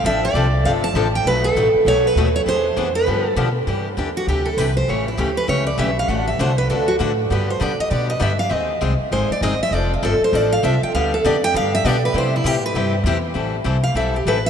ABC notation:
X:1
M:4/4
L:1/8
Q:"Swing" 1/4=198
K:Gmix
V:1 name="Steel-string acoustic guitar"
e d3 f a2 g | B A3 ^c B2 c | c3 B3 z2 | [K:C] z3 ^F G A B c |
^c E G B c d e f | ^f e c B A ^F z2 | B c d _e d e =e f | _e2 z2 c d e =e |
d F A c d f e g | f A d g f e d B | c E G B2 z3 | [K:Am] z3 f e G B e |]
V:2 name="Steel-string acoustic guitar"
[C,F,CDA] z [C,F,CDA] z [C,F,CDA] z [C,F,CDA] z | [B,,^F,A,^D^F] z [B,,F,A,DF] z [B,,F,A,DF] z [B,,F,A,DF] z | [E,B,D^G] z [E,B,DG] z [D,F,B,D=G] z [D,F,B,DG] z | [K:C] [C,E,DG] z [C,E,DG] z [C,E,DG] z [C,E,DG] z |
[^C,E,A,^CG] z [C,E,A,CG] z [C,E,A,CG] z [C,E,A,CG] z | [D,A,D^FA] z [D,A,DFA] z [D,A,DFA] z [D,A,DFA] z | [D,G,B,DG] z [D,G,B,DG] z [D,G,B,DG] z [D,G,B,DG] z | [_E,_A,C_E_A] z [E,A,CEA] z [E,A,CEA] z [E,A,CEA] z |
[F,CDA] z [F,CDA] z [F,CDA] z [F,CDA] z | [D,G,B,DG] z [D,G,B,DG] z [D,G,B,DG] z [D,G,B,DG] z | [C,G,CEG] z [C,G,CEG] z [C,G,CEG] z [C,G,CEG] z | [K:Am] [E,G,CEA] z [E,G,CEA] z [E,G,CEA] z [E,G,CEA] z |]
V:3 name="Upright bass" clef=bass
A,,,2 C,,2 G,,,2 A,,,2 | B,,,2 A,,, z B,,,2 ^D,,2 | E,,2 F,,2 G,,2 B,,2 | [K:C] G,,2 E,,2 D,,2 C,,2 |
A,,,2 D,,2 ^C,,2 B,,,2 | A,,,2 C,,2 D,,2 A,,2 | G,,2 D, z B,,2 G,,2 | _E,,2 C,, z _A,,, z G,,, z |
F,,,2 G,,, z A,,,2 C,, z | D,,2 F,,2 G,,2 B,,2 | C,2 A,,2 G,,2 E,,2 | [K:Am] A,,,2 C,,2 B,,,2 A,,,2 |]